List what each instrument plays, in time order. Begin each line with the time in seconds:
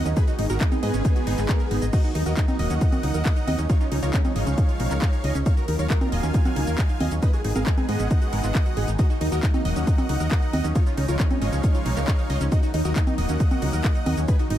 Already playing: analog synth pad D#3 F#3 A#3 D#4
0.06 fm bass D#2, synth pluck C#4, closed hi-hat, shaker
0.17 analog synth pad G#3 B3 G#4, synth pluck D#4, supersaw synth G#4 B4, kick, closed hi-hat, shaker
0.28 supersaw synth D#4, synth pluck F#4, closed hi-hat, shaker
0.39 fm bass G#1, synth pluck D#4, supersaw synth D#4, open hi-hat, ride
0.50 fm bass G#1, supersaw synth F#4 A#4, synth pluck A#4, closed hi-hat, shaker
0.61 supersaw synth D#4, synth pluck D#5, kick, clap, closed hi-hat, shaker
0.72 synth pluck D#4, supersaw synth D#4, closed hi-hat, high conga, shaker
0.83 fm bass G#2, supersaw synth B3 G#4, synth pluck D#5, open hi-hat, ride
0.94 fm bass G#1, synth pluck C#4, closed hi-hat, shaker
1.05 synth pluck D#4, kick, closed hi-hat, shaker
1.16 synth pluck F#4, closed hi-hat, shaker
1.27 fm bass G#1, synth pluck D#4, open hi-hat, ride
1.38 fm bass G#1, synth pluck D#4, clap, closed hi-hat, shaker
1.49 synth pluck A#4, kick, clap, closed hi-hat, shaker
1.60 synth pluck A#4, closed hi-hat, shaker
1.71 fm bass G#1, synth pluck D#4, open hi-hat, ride
1.82 fm bass G#1, synth pluck D#5, closed hi-hat, shaker
1.93 analog synth pad D#3 F#3 A#3 D#4, synth pluck D#4, supersaw synth F#4 D#5, kick, closed hi-hat, crash, shaker
2.04 supersaw synth D#4, synth pluck F#4, shaker
2.15 fm bass D#2, supersaw synth D#4, synth pluck D#4, open hi-hat, ride
2.26 fm bass D#2, supersaw synth F#4 D#5, synth pluck A#4, closed hi-hat, shaker
2.37 supersaw synth D#4, synth pluck D#5, kick, clap, closed hi-hat, shaker
2.48 synth pluck D#4, supersaw synth D#4, closed hi-hat, high conga, shaker
2.59 fm bass D#1, synth pluck D#5, supersaw synth D#5 F#5, open hi-hat, ride
2.70 fm bass D#2, synth pluck C#4, closed hi-hat, shaker
2.81 synth pluck D#4, kick, closed hi-hat, shaker
2.92 synth pluck F#4, closed hi-hat, high conga, shaker
3.03 fm bass C#2, synth pluck D#4, open hi-hat, ride
3.14 fm bass D#2, synth pluck A#4, closed hi-hat, shaker
3.25 synth pluck D#5, kick, clap, closed hi-hat, shaker
3.36 synth pluck D#4, closed hi-hat, shaker
3.47 fm bass D#2, synth pluck D#5, open hi-hat, ride, high conga
3.58 fm bass D#2, synth pluck C#4, closed hi-hat, shaker
3.70 analog synth pad C#3 F3 G#3, synth pluck D#4, supersaw synth F4 C#5, kick, closed hi-hat, shaker
3.81 supersaw synth C#4, synth pluck F4, shaker
3.92 fm bass C#2, supersaw synth C#4, synth pluck D#4, open hi-hat, ride
4.03 fm bass C#2, supersaw synth F4 C#5, synth pluck A#4, closed hi-hat, shaker
4.14 supersaw synth C#4, synth pluck D#5, kick, clap, closed hi-hat, shaker
4.25 supersaw synth C#4, synth pluck D#4, closed hi-hat, high conga, shaker
4.36 fm bass G#1, supersaw synth C#5 F5, synth pluck D#5, open hi-hat, ride
4.47 fm bass C#2, synth pluck C#4, closed hi-hat, shaker
4.58 synth pluck D#4, kick, closed hi-hat, shaker
4.69 synth pluck F4, closed hi-hat, shaker
4.80 fm bass B1, synth pluck D#4, open hi-hat, ride
4.91 fm bass C#2, synth pluck A#4, clap, closed hi-hat, shaker
5.02 synth pluck D#5, kick, clap, closed hi-hat, shaker
5.13 synth pluck D#4, closed hi-hat, shaker
5.24 fm bass C#2, synth pluck D#5, open hi-hat, ride
5.35 fm bass C#2, synth pluck C#4, closed hi-hat, shaker
5.46 analog synth pad D#3 F#3 A#3 F4, synth pluck D#4, supersaw synth C#5 F5, kick, closed hi-hat, shaker
5.57 synth pluck F#4, supersaw synth A#4, shaker
5.68 fm bass D#2, synth pluck D#4, supersaw synth A#4, open hi-hat, ride
5.79 fm bass D#2, synth pluck A#4, supersaw synth C#5 F5, closed hi-hat, shaker
5.90 supersaw synth A#4, synth pluck D#5, kick, clap, closed hi-hat, shaker
6.01 synth pluck D#4, supersaw synth A#4, closed hi-hat, high conga, shaker
6.12 fm bass D#1, synth pluck D#5, supersaw synth F5 G#5, open hi-hat, ride
6.23 fm bass D#2, synth pluck C#4, closed hi-hat, shaker
6.34 synth pluck D#4, kick, closed hi-hat, shaker
6.45 synth pluck F#4, closed hi-hat, high conga, shaker
6.56 fm bass C#2, synth pluck D#4, open hi-hat, ride
6.67 fm bass D#2, synth pluck A#4, closed hi-hat, shaker
6.78 synth pluck D#5, kick, clap, closed hi-hat, shaker
6.89 synth pluck D#4, closed hi-hat, shaker
7.00 fm bass D#2, synth pluck D#5, open hi-hat, ride, high conga
7.11 fm bass D#2, synth pluck C#4, closed hi-hat, shaker
7.22 analog synth pad D#3 G#3 B3 G#4, synth pluck D#4, supersaw synth B4 D#5, kick, closed hi-hat, shaker
7.33 synth pluck F#4, supersaw synth G#4, closed hi-hat, shaker
7.44 fm bass G#1, synth pluck D#4, supersaw synth G#4, open hi-hat, ride
7.55 fm bass G#1, supersaw synth G#4 F5, synth pluck A#4, closed hi-hat, high conga, shaker
7.67 synth pluck D#5, kick, clap, closed hi-hat, shaker
7.78 synth pluck D#4, supersaw synth G#4, closed hi-hat, high conga, shaker
7.89 fm bass G#2, supersaw synth D#5 F#5, synth pluck D#5, open hi-hat, ride
8.00 fm bass G#1, synth pluck C#4, closed hi-hat, shaker
8.11 synth pluck D#4, kick, closed hi-hat, shaker
8.22 synth pluck F#4, closed hi-hat, shaker
8.33 fm bass G#1, synth pluck A#4, open hi-hat, ride
8.44 fm bass G#1, synth pluck F4, clap, closed hi-hat, shaker
8.55 synth pluck D#5, kick, clap, closed hi-hat, shaker
8.66 synth pluck F#4, closed hi-hat, shaker
8.77 fm bass G#1, synth pluck G#4, open hi-hat, ride
8.88 fm bass G#1, synth pluck D#4, closed hi-hat, shaker
8.99 analog synth pad F#3 A#3 D#4, synth pluck D#4, supersaw synth F#4 D#5, kick, closed hi-hat, shaker
9.10 supersaw synth D#4, synth pluck F#4, shaker
9.21 fm bass D#2, supersaw synth D#4, synth pluck D#4, open hi-hat, ride
9.32 fm bass D#2, supersaw synth F#4 D#5, synth pluck A#4, closed hi-hat, shaker
9.43 supersaw synth D#4, synth pluck D#5, kick, clap, closed hi-hat, shaker
9.54 supersaw synth D#4, synth pluck D#4, closed hi-hat, high conga, shaker
9.65 fm bass D#1, supersaw synth D#5 F#5, synth pluck D#5, open hi-hat, ride
9.76 fm bass D#2, synth pluck C#4, closed hi-hat, shaker
9.87 synth pluck D#4, kick, closed hi-hat, shaker
9.98 synth pluck F#4, closed hi-hat, high conga, shaker
10.09 fm bass C#2, synth pluck D#4, open hi-hat, ride
10.20 fm bass D#2, synth pluck A#4, closed hi-hat, shaker
10.31 synth pluck D#5, kick, clap, closed hi-hat, shaker
10.42 synth pluck D#4, closed hi-hat, shaker
10.53 fm bass D#2, synth pluck D#5, open hi-hat, ride, high conga
10.64 fm bass D#2, synth pluck C#4, closed hi-hat, shaker
10.75 analog synth pad C#3 F3 G#3, synth pluck D#4, supersaw synth F4 C#5, kick, closed hi-hat, shaker
10.86 supersaw synth C#4, synth pluck F4, shaker
10.97 fm bass C#2, supersaw synth C#4, synth pluck D#4, open hi-hat, ride
11.08 fm bass C#2, supersaw synth F4 C#5, synth pluck A#4, closed hi-hat, shaker
11.20 supersaw synth C#4, synth pluck D#5, kick, clap, closed hi-hat, shaker
11.31 supersaw synth C#4, synth pluck D#4, closed hi-hat, high conga, shaker
11.42 fm bass G#1, supersaw synth C#5 F5, synth pluck D#5, open hi-hat, ride
11.53 fm bass C#2, synth pluck C#4, closed hi-hat, shaker
11.64 synth pluck D#4, kick, closed hi-hat, shaker
11.75 synth pluck F4, closed hi-hat, shaker
11.86 fm bass B1, synth pluck D#4, open hi-hat, ride
11.97 fm bass C#2, synth pluck A#4, clap, closed hi-hat, shaker
12.08 synth pluck D#5, kick, clap, closed hi-hat, shaker
12.19 synth pluck D#4, closed hi-hat, shaker
12.30 fm bass C#2, synth pluck D#5, open hi-hat, ride
12.41 fm bass C#2, synth pluck C#4, closed hi-hat, shaker
12.52 analog synth pad D#3 F#3 A#3, synth pluck D#4, supersaw synth F#4 D#5, kick, closed hi-hat, shaker
12.63 supersaw synth D#4, synth pluck F#4, shaker
12.74 fm bass D#2, supersaw synth D#4, synth pluck D#4, open hi-hat, ride
12.85 fm bass D#2, supersaw synth F#4 D#5, synth pluck A#4, closed hi-hat, shaker
12.96 supersaw synth D#4, synth pluck D#5, kick, clap, closed hi-hat, shaker
13.07 supersaw synth D#4, synth pluck D#4, closed hi-hat, high conga, shaker
13.18 fm bass D#1, synth pluck D#5, supersaw synth D#5 F#5, open hi-hat, ride
13.29 fm bass D#2, synth pluck C#4, closed hi-hat, shaker
13.40 synth pluck D#4, kick, closed hi-hat, shaker
13.51 synth pluck F#4, closed hi-hat, high conga, shaker
13.62 fm bass C#2, synth pluck D#4, open hi-hat, ride
13.73 fm bass D#2, synth pluck A#4, closed hi-hat, shaker
13.84 synth pluck D#5, kick, clap, closed hi-hat, shaker
13.95 synth pluck D#4, closed hi-hat, shaker
14.06 fm bass D#2, synth pluck D#5, open hi-hat, ride, high conga
14.17 fm bass D#2, synth pluck C#4, closed hi-hat, shaker
14.28 analog synth pad B2 G#3 D#4, synth pluck D#4, supersaw synth G#4 B4, kick, closed hi-hat, shaker
14.39 supersaw synth D#4, synth pluck F#4, closed hi-hat, shaker
14.50 fm bass G#1, supersaw synth D#4, synth pluck D#4, open hi-hat, ride